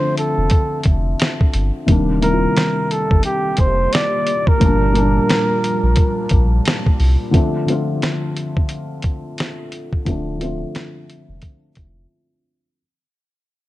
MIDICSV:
0, 0, Header, 1, 6, 480
1, 0, Start_track
1, 0, Tempo, 681818
1, 1324, Time_signature, 4, 2, 24, 8
1, 9631, End_track
2, 0, Start_track
2, 0, Title_t, "Flugelhorn"
2, 0, Program_c, 0, 56
2, 0, Note_on_c, 0, 72, 91
2, 126, Note_off_c, 0, 72, 0
2, 130, Note_on_c, 0, 69, 81
2, 578, Note_off_c, 0, 69, 0
2, 1570, Note_on_c, 0, 70, 97
2, 2055, Note_on_c, 0, 69, 85
2, 2065, Note_off_c, 0, 70, 0
2, 2287, Note_off_c, 0, 69, 0
2, 2291, Note_on_c, 0, 67, 96
2, 2534, Note_on_c, 0, 72, 96
2, 2544, Note_off_c, 0, 67, 0
2, 2772, Note_on_c, 0, 74, 108
2, 2783, Note_off_c, 0, 72, 0
2, 3154, Note_on_c, 0, 70, 93
2, 3165, Note_off_c, 0, 74, 0
2, 4689, Note_off_c, 0, 70, 0
2, 9631, End_track
3, 0, Start_track
3, 0, Title_t, "Felt piano"
3, 0, Program_c, 1, 0
3, 0, Control_c, 1, 64, 127
3, 0, Note_on_c, 1, 50, 75
3, 0, Note_on_c, 1, 53, 72
3, 0, Note_on_c, 1, 57, 67
3, 0, Note_on_c, 1, 60, 72
3, 0, Note_on_c, 1, 62, 80
3, 521, Note_off_c, 1, 50, 0
3, 526, Note_off_c, 1, 53, 0
3, 530, Note_off_c, 1, 57, 0
3, 536, Note_off_c, 1, 60, 0
3, 541, Note_off_c, 1, 62, 0
3, 1310, Note_on_c, 1, 48, 71
3, 1319, Note_on_c, 1, 51, 69
3, 1330, Note_on_c, 1, 55, 72
3, 1333, Control_c, 1, 64, 0
3, 1339, Note_on_c, 1, 58, 70
3, 1349, Note_on_c, 1, 62, 79
3, 1453, Control_c, 1, 64, 127
3, 1538, Note_off_c, 1, 48, 0
3, 1543, Note_off_c, 1, 51, 0
3, 1548, Note_off_c, 1, 55, 0
3, 1553, Note_off_c, 1, 58, 0
3, 1556, Note_on_c, 1, 48, 76
3, 1557, Note_off_c, 1, 62, 0
3, 1565, Note_on_c, 1, 51, 72
3, 1575, Note_on_c, 1, 55, 65
3, 1585, Note_on_c, 1, 58, 69
3, 1594, Note_on_c, 1, 64, 67
3, 1632, Note_off_c, 1, 64, 0
3, 1640, Note_on_c, 1, 65, 75
3, 2445, Note_off_c, 1, 48, 0
3, 2449, Note_off_c, 1, 51, 0
3, 2454, Note_off_c, 1, 55, 0
3, 2460, Note_off_c, 1, 58, 0
3, 2487, Note_off_c, 1, 65, 0
3, 3236, Note_on_c, 1, 46, 82
3, 3246, Note_on_c, 1, 53, 77
3, 3251, Control_c, 1, 64, 0
3, 3255, Note_on_c, 1, 55, 78
3, 3266, Note_on_c, 1, 58, 79
3, 3273, Note_on_c, 1, 62, 94
3, 3366, Control_c, 1, 64, 127
3, 3455, Note_off_c, 1, 46, 0
3, 3466, Note_off_c, 1, 53, 0
3, 3466, Note_on_c, 1, 46, 83
3, 3471, Note_off_c, 1, 55, 0
3, 3476, Note_off_c, 1, 58, 0
3, 3477, Note_on_c, 1, 53, 77
3, 3480, Note_off_c, 1, 62, 0
3, 3486, Note_on_c, 1, 55, 85
3, 3496, Note_on_c, 1, 58, 83
3, 3507, Note_on_c, 1, 62, 102
3, 4360, Note_off_c, 1, 46, 0
3, 4366, Note_off_c, 1, 53, 0
3, 4370, Note_off_c, 1, 55, 0
3, 4375, Note_off_c, 1, 58, 0
3, 4380, Note_off_c, 1, 62, 0
3, 5147, Note_on_c, 1, 50, 85
3, 5157, Note_on_c, 1, 53, 78
3, 5167, Note_on_c, 1, 57, 76
3, 5173, Control_c, 1, 64, 0
3, 5177, Note_on_c, 1, 60, 84
3, 5186, Note_on_c, 1, 62, 84
3, 5292, Control_c, 1, 64, 127
3, 5377, Note_off_c, 1, 50, 0
3, 5381, Note_off_c, 1, 53, 0
3, 5387, Note_off_c, 1, 57, 0
3, 5392, Note_off_c, 1, 60, 0
3, 5392, Note_on_c, 1, 50, 81
3, 5396, Note_off_c, 1, 62, 0
3, 5403, Note_on_c, 1, 53, 75
3, 5412, Note_on_c, 1, 57, 76
3, 5421, Note_on_c, 1, 60, 77
3, 5432, Note_on_c, 1, 65, 92
3, 6283, Note_off_c, 1, 50, 0
3, 6288, Note_off_c, 1, 53, 0
3, 6293, Note_off_c, 1, 57, 0
3, 6298, Note_off_c, 1, 60, 0
3, 6303, Note_off_c, 1, 65, 0
3, 7075, Note_on_c, 1, 50, 87
3, 7084, Note_on_c, 1, 53, 73
3, 7094, Note_on_c, 1, 57, 70
3, 7105, Note_on_c, 1, 60, 74
3, 7114, Note_on_c, 1, 62, 86
3, 7298, Note_off_c, 1, 50, 0
3, 7305, Note_off_c, 1, 53, 0
3, 7308, Note_on_c, 1, 50, 83
3, 7310, Note_off_c, 1, 57, 0
3, 7316, Note_off_c, 1, 60, 0
3, 7318, Note_on_c, 1, 53, 73
3, 7320, Note_off_c, 1, 62, 0
3, 7329, Note_on_c, 1, 57, 76
3, 7338, Note_on_c, 1, 60, 84
3, 7347, Note_on_c, 1, 65, 92
3, 8201, Note_off_c, 1, 50, 0
3, 8206, Note_off_c, 1, 53, 0
3, 8211, Note_off_c, 1, 57, 0
3, 8216, Note_off_c, 1, 60, 0
3, 8220, Note_off_c, 1, 65, 0
3, 9013, Control_c, 1, 64, 0
3, 9631, End_track
4, 0, Start_track
4, 0, Title_t, "Ambient pad"
4, 0, Program_c, 2, 92
4, 1323, Note_on_c, 2, 58, 70
4, 1327, Note_on_c, 2, 51, 81
4, 1328, Note_on_c, 2, 67, 87
4, 3226, Note_off_c, 2, 51, 0
4, 3247, Note_on_c, 2, 53, 86
4, 3247, Note_on_c, 2, 55, 76
4, 5135, Note_off_c, 2, 58, 0
4, 5138, Note_off_c, 2, 67, 0
4, 5146, Note_off_c, 2, 53, 0
4, 5146, Note_off_c, 2, 55, 0
4, 9631, End_track
5, 0, Start_track
5, 0, Title_t, "Sub bass"
5, 0, Program_c, 3, 38
5, 265, Note_on_c, 3, 29, 93
5, 350, Note_off_c, 3, 29, 0
5, 603, Note_on_c, 3, 29, 95
5, 809, Note_off_c, 3, 29, 0
5, 1086, Note_on_c, 3, 31, 88
5, 1204, Note_off_c, 3, 31, 0
5, 1325, Note_on_c, 3, 27, 115
5, 1736, Note_off_c, 3, 27, 0
5, 2190, Note_on_c, 3, 31, 90
5, 2273, Note_off_c, 3, 31, 0
5, 2524, Note_on_c, 3, 29, 96
5, 2729, Note_off_c, 3, 29, 0
5, 3246, Note_on_c, 3, 31, 122
5, 3657, Note_off_c, 3, 31, 0
5, 4106, Note_on_c, 3, 34, 88
5, 4191, Note_off_c, 3, 34, 0
5, 4445, Note_on_c, 3, 34, 97
5, 4650, Note_off_c, 3, 34, 0
5, 4926, Note_on_c, 3, 36, 96
5, 5045, Note_off_c, 3, 36, 0
5, 7086, Note_on_c, 3, 26, 110
5, 7496, Note_off_c, 3, 26, 0
5, 7947, Note_on_c, 3, 29, 93
5, 8031, Note_off_c, 3, 29, 0
5, 8286, Note_on_c, 3, 29, 85
5, 8491, Note_off_c, 3, 29, 0
5, 9631, End_track
6, 0, Start_track
6, 0, Title_t, "Drums"
6, 123, Note_on_c, 9, 42, 68
6, 193, Note_off_c, 9, 42, 0
6, 349, Note_on_c, 9, 42, 87
6, 360, Note_on_c, 9, 36, 94
6, 420, Note_off_c, 9, 42, 0
6, 431, Note_off_c, 9, 36, 0
6, 587, Note_on_c, 9, 42, 69
6, 602, Note_on_c, 9, 36, 81
6, 658, Note_off_c, 9, 42, 0
6, 673, Note_off_c, 9, 36, 0
6, 841, Note_on_c, 9, 42, 101
6, 856, Note_on_c, 9, 38, 117
6, 911, Note_off_c, 9, 42, 0
6, 927, Note_off_c, 9, 38, 0
6, 990, Note_on_c, 9, 36, 83
6, 1061, Note_off_c, 9, 36, 0
6, 1080, Note_on_c, 9, 42, 67
6, 1150, Note_off_c, 9, 42, 0
6, 1323, Note_on_c, 9, 42, 83
6, 1324, Note_on_c, 9, 36, 104
6, 1394, Note_off_c, 9, 36, 0
6, 1394, Note_off_c, 9, 42, 0
6, 1566, Note_on_c, 9, 42, 67
6, 1636, Note_off_c, 9, 42, 0
6, 1806, Note_on_c, 9, 42, 71
6, 1813, Note_on_c, 9, 38, 101
6, 1876, Note_off_c, 9, 42, 0
6, 1883, Note_off_c, 9, 38, 0
6, 2049, Note_on_c, 9, 42, 62
6, 2119, Note_off_c, 9, 42, 0
6, 2190, Note_on_c, 9, 36, 97
6, 2260, Note_off_c, 9, 36, 0
6, 2274, Note_on_c, 9, 42, 85
6, 2345, Note_off_c, 9, 42, 0
6, 2512, Note_on_c, 9, 42, 69
6, 2524, Note_on_c, 9, 36, 77
6, 2583, Note_off_c, 9, 42, 0
6, 2595, Note_off_c, 9, 36, 0
6, 2765, Note_on_c, 9, 42, 95
6, 2781, Note_on_c, 9, 38, 114
6, 2836, Note_off_c, 9, 42, 0
6, 2851, Note_off_c, 9, 38, 0
6, 3004, Note_on_c, 9, 42, 68
6, 3074, Note_off_c, 9, 42, 0
6, 3147, Note_on_c, 9, 36, 91
6, 3218, Note_off_c, 9, 36, 0
6, 3245, Note_on_c, 9, 42, 79
6, 3246, Note_on_c, 9, 36, 109
6, 3316, Note_off_c, 9, 36, 0
6, 3316, Note_off_c, 9, 42, 0
6, 3488, Note_on_c, 9, 42, 67
6, 3558, Note_off_c, 9, 42, 0
6, 3728, Note_on_c, 9, 42, 77
6, 3734, Note_on_c, 9, 38, 110
6, 3798, Note_off_c, 9, 42, 0
6, 3805, Note_off_c, 9, 38, 0
6, 3971, Note_on_c, 9, 42, 69
6, 4041, Note_off_c, 9, 42, 0
6, 4194, Note_on_c, 9, 42, 83
6, 4203, Note_on_c, 9, 36, 89
6, 4264, Note_off_c, 9, 42, 0
6, 4274, Note_off_c, 9, 36, 0
6, 4431, Note_on_c, 9, 42, 68
6, 4444, Note_on_c, 9, 36, 86
6, 4502, Note_off_c, 9, 42, 0
6, 4515, Note_off_c, 9, 36, 0
6, 4685, Note_on_c, 9, 42, 91
6, 4700, Note_on_c, 9, 38, 110
6, 4755, Note_off_c, 9, 42, 0
6, 4771, Note_off_c, 9, 38, 0
6, 4833, Note_on_c, 9, 36, 82
6, 4903, Note_off_c, 9, 36, 0
6, 4926, Note_on_c, 9, 46, 47
6, 4996, Note_off_c, 9, 46, 0
6, 5167, Note_on_c, 9, 36, 105
6, 5167, Note_on_c, 9, 42, 74
6, 5237, Note_off_c, 9, 36, 0
6, 5238, Note_off_c, 9, 42, 0
6, 5409, Note_on_c, 9, 42, 63
6, 5480, Note_off_c, 9, 42, 0
6, 5648, Note_on_c, 9, 42, 68
6, 5655, Note_on_c, 9, 38, 90
6, 5719, Note_off_c, 9, 42, 0
6, 5725, Note_off_c, 9, 38, 0
6, 5889, Note_on_c, 9, 42, 66
6, 5959, Note_off_c, 9, 42, 0
6, 6031, Note_on_c, 9, 36, 87
6, 6102, Note_off_c, 9, 36, 0
6, 6116, Note_on_c, 9, 42, 76
6, 6186, Note_off_c, 9, 42, 0
6, 6353, Note_on_c, 9, 42, 58
6, 6365, Note_on_c, 9, 36, 78
6, 6423, Note_off_c, 9, 42, 0
6, 6436, Note_off_c, 9, 36, 0
6, 6604, Note_on_c, 9, 42, 89
6, 6619, Note_on_c, 9, 38, 108
6, 6674, Note_off_c, 9, 42, 0
6, 6690, Note_off_c, 9, 38, 0
6, 6842, Note_on_c, 9, 42, 58
6, 6913, Note_off_c, 9, 42, 0
6, 6988, Note_on_c, 9, 36, 80
6, 7058, Note_off_c, 9, 36, 0
6, 7084, Note_on_c, 9, 42, 76
6, 7085, Note_on_c, 9, 36, 93
6, 7155, Note_off_c, 9, 42, 0
6, 7156, Note_off_c, 9, 36, 0
6, 7329, Note_on_c, 9, 42, 63
6, 7399, Note_off_c, 9, 42, 0
6, 7568, Note_on_c, 9, 42, 70
6, 7574, Note_on_c, 9, 38, 93
6, 7638, Note_off_c, 9, 42, 0
6, 7645, Note_off_c, 9, 38, 0
6, 7811, Note_on_c, 9, 42, 59
6, 7881, Note_off_c, 9, 42, 0
6, 8037, Note_on_c, 9, 42, 75
6, 8044, Note_on_c, 9, 36, 81
6, 8107, Note_off_c, 9, 42, 0
6, 8115, Note_off_c, 9, 36, 0
6, 8275, Note_on_c, 9, 42, 61
6, 8286, Note_on_c, 9, 36, 73
6, 8345, Note_off_c, 9, 42, 0
6, 8356, Note_off_c, 9, 36, 0
6, 9631, End_track
0, 0, End_of_file